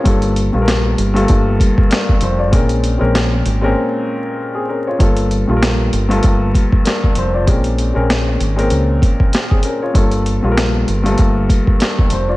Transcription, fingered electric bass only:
X:1
M:4/4
L:1/16
Q:"Swing 16ths" 1/4=97
K:Gm
V:1 name="Fingered electric bass" clef=bass
G,,,3 B,,,3 G,,,2 G,,,2 z4 F,,,2 | B,,,3 B,,,3 _A,,,2 z8 | G,,,3 B,,,3 G,,,2 G,,,2 z4 F,,,2 | B,,,3 B,,,3 _A,,,2 _D,,2 z6 |
G,,,3 B,,,3 G,,,2 G,,,2 z4 F,,,2 |]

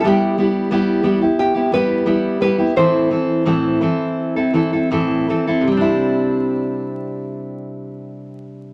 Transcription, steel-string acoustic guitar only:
X:1
M:4/4
L:1/16
Q:1/4=82
K:C
V:1 name="Steel-string acoustic guitar"
[G,B,EG]2 [G,B,EG]2 [G,B,EG]2 [G,B,EG] [B,EG]2 [B,EG] [G,B,EG]2 [G,B,EG]2 [G,B,EG] [B,EG] | [A,,E,CEA]2 [E,CEA]2 [A,,E,CEA]2 [E,CEA]3 [CEA] [E,CEA] [CEA] [A,,E,CEA]2 [E,CEA] [CEA] | [C,G,CDE]16 |]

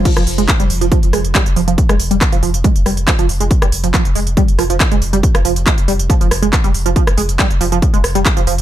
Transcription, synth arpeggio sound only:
X:1
M:4/4
L:1/16
Q:1/4=139
K:Fm
V:1 name="Synth arpeggio sound" clef=bass
F, F, z A, z G, z F, F, z A, z G, z F, F, | z A, z G, z F, F, z A, z G, z F, F, z A, | z G, z F, F, z A, z G, z F, F, z A, z G, | z F, F, z A, z G, z F, F, z A, z G, z F, |
F, z A, z G, z F, F, z A, z G, z F, F, z |]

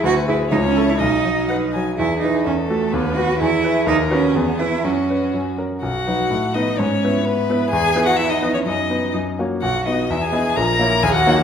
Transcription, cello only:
X:1
M:2/4
L:1/16
Q:1/4=126
K:E
V:1 name="Cello"
F2 E2 D C2 E | D6 z2 | E2 D2 C2 A,2 | B,2 F2 E4 |
[K:B] D2 C2 B,2 E2 | C4 z4 | F6 D2 | C4 B,4 |
G3 F E D2 C | D4 z4 | F2 D2 E G3 | A4 G F3 |]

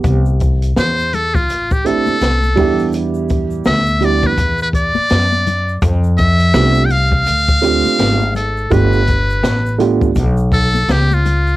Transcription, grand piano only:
X:1
M:4/4
L:1/16
Q:"Swing 16ths" 1/4=83
K:C
V:1 name="Grand piano"
[B,G] z8 z [A,CDEG]2 z2 [G,B,DEG]2- | [G,B,DEG]4 z2 [G,B,DEG]2 z8 | z4 [A,CDFG]2 z4 [A,CDFG]2 z4 | [A,B,DFG]2 z4 [A,B,DFG]2 z8 |]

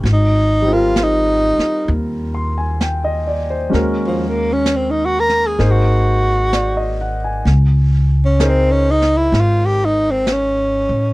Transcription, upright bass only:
X:1
M:4/4
L:1/8
Q:"Swing" 1/4=65
K:Ablyd
V:1 name="Upright bass" clef=bass
A,,,3 z E,,4 | E,,4 A,,,4 | _D,,4 A,,,3 =A,, |]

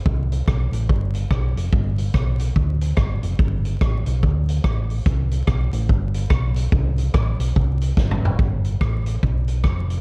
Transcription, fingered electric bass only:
X:1
M:4/4
L:1/8
Q:"Swing" 1/4=144
K:Gmix
V:1 name="Fingered electric bass" clef=bass
C,,2 B,,, A,,, G,,,2 B,,, F,,, | G,,,2 B,,,2 D,,2 G,,, F,,, | G,,,2 A,,, B,,, D,,2 A,,,2 | C,,2 B,,, A,,, G,,,2 B,,,2 |
C,,2 A,,, B,,, C,,2 G,,, F,,, | G,,,2 A,,,2 B,,,2 F,,,2 |]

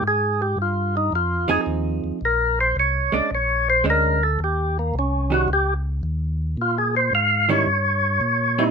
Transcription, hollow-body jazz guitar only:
X:1
M:4/4
L:1/8
Q:"Swing" 1/4=110
K:Ebmix
V:1 name="Hollow-body jazz guitar"
z4 z [F,CEA]3 | z3 [A,^C=D] z2 [A,CD] z | z3 [E,G,D^F] z4 | z3 [E,G,D_F] z3 [G,CE] |]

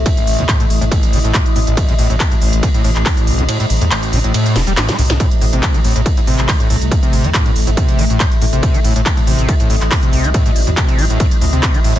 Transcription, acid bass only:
X:1
M:4/4
L:1/16
Q:1/4=140
K:Am
V:1 name="Acid bass" clef=bass
A,, A,,,2 E, A,, A,, z A,, A,,,2 E, A,, A,, z A,, A,,,- | A,,, E, A,, A,, z A,, A,,,2 E, A,, A,, z A,, A,,,2 E, | A,, A,, z A,, A,,,2 E, A,, A,,2 C, G, A,,, A, G,, A,, | A,, z A,, C,2 E, A,, A,, z A,, C,2 E, A,, A,, z |
A,, C,2 E, A,, A,, z A,, C,2 E, A,, A,, z A,, C,- | C, E, A,, A,, z A,, C,2 E, A,, A,, z A,, C,2 E, | A,, A,, z A,, C,2 E, A,, A,, z A,, C,2 E, A,, A,, |]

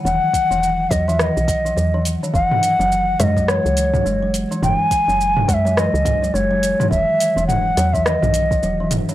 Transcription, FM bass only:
X:1
M:4/4
L:1/16
Q:"Swing 16ths" 1/4=105
K:E
V:1 name="FM bass" clef=bass
E,,, z2 E,,,3 E,,3 B,,,3 E,,3 z | F,,, z2 F,,,3 F,,3 C,,3 F,,,3 z | F,,, z2 F,,,3 F,,3 C,,3 F,,,3 z | E,,, z2 E,,,3 E,,3 B,,,3 E,,,3 z |]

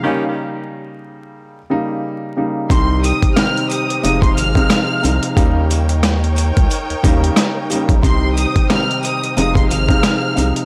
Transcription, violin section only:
X:1
M:4/4
L:1/16
Q:"Swing 16ths" 1/4=90
K:Ebmix
V:1 name="Violin section"
z16 | c'2 e'2 f'2 e'2 e' c' f'6 | z16 | c'2 e'2 f'2 e'2 e' c' f'6 |]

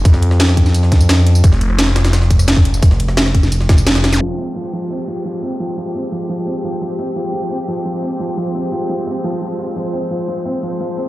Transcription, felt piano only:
X:1
M:4/4
L:1/8
Q:1/4=173
K:Fm
V:1 name="Felt piano" clef=bass
z8 | z8 | z8 | F, C F, F, C F, F, C |
F, F, C F, F, C F, F, | C F, F, C F, F, C F, | F, C F, F, C F, F, F | F, C F, F, C F, F, C |]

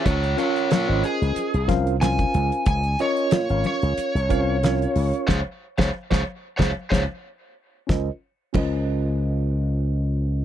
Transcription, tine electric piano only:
X:1
M:4/4
L:1/16
Q:"Swing 16ths" 1/4=92
K:Db
V:1 name="Tine electric piano"
[DFBcd] z [DFBdf]2 z [DFBce]4 z [DFBcf]2 [DFBcf]4- | [DFBcf] z [DFBde]2 z [DFBdf]4 z [DFBcf]2 [DFBdf]4 | [Acd] z2 [Acd] z [Acd] z2 [Acd] z [Acd] z4 z | [DFBce] z3 [DFBce]12 |]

